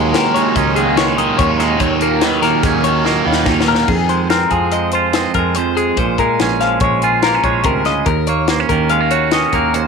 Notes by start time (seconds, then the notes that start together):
Already playing: D#2 A#2 D#3 F#3 G#3 A#3 D#4 D#5
0.13 D#3 F#3 A#3 D#4 A#4, snare, closed hi-hat
0.34 D#2 A#2 D#3 F#3 G#3 A#3 D#4 C#5, closed hi-hat
0.55 C#2 D#3 F#3 A#3 C#4 D#4 D#5, kick, closed hi-hat
0.75 D#3 F#3 A#3 D#4 G#4, closed hi-hat
0.96 D#2 A#2 D#3 F#3 G#3 A#3 D#4 C#5, snare, closed hi-hat
1.16 D#3 F#3 A#3 D#4 D#5, closed hi-hat
1.37 D#2 A#2 D#3 F#3 A#3 D#4 C#5, kick, closed hi-hat
1.58 D#3 F#3 G#3 A#3 D#4 D#5, snare, closed hi-hat
1.78 D#2 A#2 D#3 F#3 A#3 D#4 C#5, kick, closed hi-hat
1.99 D#3 F#3 A#3 D#4 A#4, closed hi-hat
2.20 D#3 F#3 A#3 D#4 B4, snare, closed hi-hat
2.41 D#2 A#2 D#3 F#3 A#3 D#4 A#4, snare, closed hi-hat
2.62 D#2 D#3 F#3 A#3 C#4 D#4 G#4, kick, snare, closed hi-hat
2.82 D#3 F#3 A#3 D#4 C#5, closed hi-hat
2.87 D#3
3.04 D#2 A#2 D#3 F#3 A#3 D#4 D#5, snare
3.25 D#2 D#3 F#3 A#3 D#4 B4
3.32 snare
3.46 D#2 A#2 D#3 F#3 A#3 D#4 A#4, kick, snare
3.61 snare
3.67 D#2 D#3 F#3 A#3 D#4 A#4
3.75 snare
3.88 F2 G#4, kick, crash
4.09 G#3 C5, closed hi-hat
4.30 C4 A#4, snare, closed hi-hat
4.51 F2 F3 G#4, kick, closed hi-hat
4.72 G#3 D#5, closed hi-hat
4.92 F4 C5, closed hi-hat
5.13 C4 D#5, snare, closed hi-hat
5.34 F2 A#4, kick, closed hi-hat
5.38 G#3
5.55 F2 C5, closed hi-hat
5.77 G#3 G#4, closed hi-hat
5.97 A#1 A#2 C5, kick, closed hi-hat
6.18 A#2 G#3 A#4, kick, closed hi-hat
6.40 A#1 C#4 G#4, snare, closed hi-hat
6.61 F3 F5, snare, closed hi-hat
6.80 A#1 G#3 C#5, kick, closed hi-hat
7.02 F4 G#4, closed hi-hat
7.23 A#3 A#4, snare, closed hi-hat
7.35 C#4
7.44 A#1 G#3 C#5, kick, closed hi-hat
7.64 D2 C3 A#4, kick, closed hi-hat
7.85 C#3 D#5, snare, closed hi-hat
8.06 D#2 A#4, kick, closed hi-hat
8.27 A#3 C#5, closed hi-hat
8.48 A#3 C5, snare, closed hi-hat
8.60 C#4
8.69 D#2 D#3 A#4, kick, closed hi-hat
8.90 G#3 F5, closed hi-hat
9.00 A#3
9.11 F#4 C#5, closed hi-hat
9.31 C#4 D#5, snare, closed hi-hat
9.53 D#2 A#3 A#4, kick, closed hi-hat
9.74 D#2 C5, closed hi-hat